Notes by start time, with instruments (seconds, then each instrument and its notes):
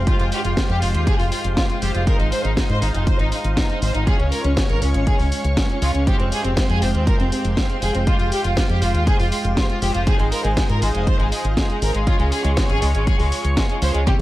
Already playing: string machine G#3 F5 G5 C6
0.07 analog polysynth G#3 F4 G4 C5, violin section F4, kick, closed hi-hat
0.19 fingered electric bass F1, violin section F4, closed hi-hat
0.32 violin section G4, open hi-hat
0.44 fingered electric bass F1, violin section F4, closed hi-hat
0.57 violin section F4, kick, snare, closed hi-hat
0.69 fingered electric bass F2, violin section G4, closed hi-hat
0.82 fingered electric bass F1, analog polysynth G#3 F4 G4 C5, violin section F4, open hi-hat
0.94 fingered electric bass D#2, violin section F4, closed hi-hat
1.07 violin section G#4, kick, closed hi-hat
1.19 fingered electric bass F1, violin section F4, open hi-hat
1.32 violin section F4, open hi-hat
1.44 fingered electric bass F1, closed hi-hat
1.57 violin section F4, kick, snare, closed hi-hat
1.70 violin section F4, closed hi-hat
1.82 fingered electric bass F1, analog polysynth G#3 F4 G4 C5, violin section G4, open hi-hat
1.94 fingered electric bass F1, violin section F4, closed hi-hat
2.07 analog polysynth G#3 D#4 F4 C5, violin section A#4, string machine D#5 F5, kick, closed hi-hat
2.19 fingered electric bass G#1, violin section D#4, closed hi-hat
2.32 violin section C5, open hi-hat
2.44 fingered electric bass G#1, violin section D#4, closed hi-hat
2.57 violin section D#4, kick, snare, closed hi-hat
2.69 fingered electric bass G#2, violin section C5, closed hi-hat
2.82 fingered electric bass G#1, analog polysynth G#3 D#4 F4 C5, violin section D#4, open hi-hat
2.94 fingered electric bass F1, violin section D#4, closed hi-hat
3.07 violin section C5, kick, closed hi-hat
3.19 fingered electric bass G#1, violin section D#4, closed hi-hat
3.32 violin section D#4, open hi-hat
3.44 fingered electric bass G#1, closed hi-hat
3.57 violin section D#4, kick, snare, closed hi-hat
3.70 violin section D#4, closed hi-hat
3.82 fingered electric bass G#1, violin section C5, open hi-hat
3.94 fingered electric bass G#1, violin section D#4, closed hi-hat
4.07 analog polysynth G#3 C#4 F4 C#5, string machine G#3 C#5 F5 C#6, violin section G#4, kick, closed hi-hat
4.19 fingered electric bass C#2, violin section C#4, closed hi-hat
4.32 violin section A#4, open hi-hat
4.44 fingered electric bass C#2, violin section C#4, closed hi-hat
4.57 violin section C#4, kick, snare, closed hi-hat
4.69 fingered electric bass G#1, violin section A#4, closed hi-hat
4.82 fingered electric bass C#2, analog polysynth G#3 C#4 F4 C#5, violin section C#4, open hi-hat
4.94 fingered electric bass G#1, violin section C#4, closed hi-hat
5.07 violin section G#4, kick, closed hi-hat
5.19 fingered electric bass C#2, violin section C#4, open hi-hat
5.32 violin section C#4, open hi-hat
5.44 fingered electric bass C#2, closed hi-hat
5.57 violin section C#4, kick, snare, closed hi-hat
5.69 violin section C#4, closed hi-hat
5.82 fingered electric bass C#2, analog polysynth G#3 C#4 F4 C#5, violin section F4, open hi-hat
5.94 fingered electric bass C#2, violin section C#4, closed hi-hat
6.07 analog polysynth G#3 F4 G4 C5, violin section G4, string machine G5 C6, kick, closed hi-hat
6.20 fingered electric bass F1, violin section C4, closed hi-hat
6.32 violin section G#4, open hi-hat
6.44 fingered electric bass F1, violin section C4, closed hi-hat
6.57 violin section C4, kick, snare, closed hi-hat
6.70 fingered electric bass F2, violin section G#4, closed hi-hat
6.82 fingered electric bass F1, analog polysynth G#3 F4 G4 C5, violin section C4, open hi-hat
6.94 fingered electric bass D#2, violin section C4, closed hi-hat
7.07 violin section A#4, kick, closed hi-hat
7.19 fingered electric bass F1, violin section C4, closed hi-hat
7.32 violin section C4, open hi-hat
7.44 fingered electric bass F1, closed hi-hat
7.57 violin section C4, kick, snare, closed hi-hat
7.70 violin section C4, closed hi-hat
7.82 fingered electric bass F1, violin section G#4, open hi-hat
7.94 fingered electric bass F1, violin section C4, closed hi-hat
8.07 analog polysynth G#3 F4 G4 C5, violin section F4, kick, closed hi-hat
8.19 fingered electric bass F1, violin section F4, closed hi-hat
8.32 violin section G4, open hi-hat
8.44 fingered electric bass F1, violin section F4, closed hi-hat
8.57 violin section F4, kick, snare, closed hi-hat
8.69 fingered electric bass F2, violin section G4, closed hi-hat
8.82 fingered electric bass F1, analog polysynth G#3 F4 G4 C5, violin section F4, open hi-hat
8.94 fingered electric bass D#2, violin section F4, closed hi-hat
9.07 violin section G#4, kick, closed hi-hat
9.19 fingered electric bass F1, violin section F4, open hi-hat
9.32 violin section F4, open hi-hat
9.44 fingered electric bass F1, closed hi-hat
9.57 violin section F4, kick, snare, closed hi-hat
9.70 violin section F4, closed hi-hat
9.82 fingered electric bass F1, analog polysynth G#3 F4 G4 C5, violin section G4, open hi-hat
9.94 fingered electric bass F1, violin section F4, closed hi-hat
10.07 analog polysynth G#3 D#4 F4 C5, string machine G#4 D#5, violin section G#4, kick, closed hi-hat
10.19 fingered electric bass G#1, violin section G#3, closed hi-hat
10.32 violin section A#4, open hi-hat
10.44 fingered electric bass G#1, violin section G#3, closed hi-hat
10.57 violin section G#3, kick, snare, closed hi-hat
10.69 fingered electric bass G#2, violin section A#4, closed hi-hat
10.82 fingered electric bass G#1, analog polysynth G#3 D#4 F4 C5, violin section G#3, open hi-hat
10.94 fingered electric bass F1, violin section G#3, closed hi-hat
11.07 violin section C5, kick, closed hi-hat
11.19 fingered electric bass G#1, violin section G#3, closed hi-hat
11.32 violin section G#3, open hi-hat
11.44 fingered electric bass G#1, closed hi-hat
11.57 violin section G#3, kick, snare, closed hi-hat
11.69 violin section G#3, closed hi-hat
11.82 fingered electric bass G#1, violin section A#4, open hi-hat
11.94 fingered electric bass G#1, violin section G#3, closed hi-hat
12.07 analog polysynth G#3 C#4 F4 C#5, violin section F4, string machine C#5 C#6, kick, closed hi-hat
12.19 fingered electric bass C#2, violin section G#3, closed hi-hat
12.32 violin section G#4, open hi-hat
12.44 fingered electric bass C#2, violin section G#3, closed hi-hat
12.57 violin section G#3, kick, snare, closed hi-hat
12.69 fingered electric bass G#1, violin section G#4, closed hi-hat
12.82 fingered electric bass C#2, analog polysynth G#3 C#4 F4 C#5, violin section G#3, open hi-hat
12.94 fingered electric bass G#1, violin section G#3, closed hi-hat
13.07 violin section G#4, kick, closed hi-hat
13.19 fingered electric bass C#2, violin section G#3, open hi-hat
13.32 violin section G#3, open hi-hat
13.44 fingered electric bass C#2, closed hi-hat
13.57 violin section G#3, kick, snare, closed hi-hat
13.69 violin section G#3, closed hi-hat
13.82 fingered electric bass C#2, analog polysynth G#3 C#4 F4 C#5, violin section C5, open hi-hat
13.94 fingered electric bass C#2, violin section G#3, closed hi-hat
14.07 synth arpeggio sound C3, violin section G3 G4, analog polysynth G3 C4 E4 C5, string machine C5 E5 G5 E6, kick, closed hi-hat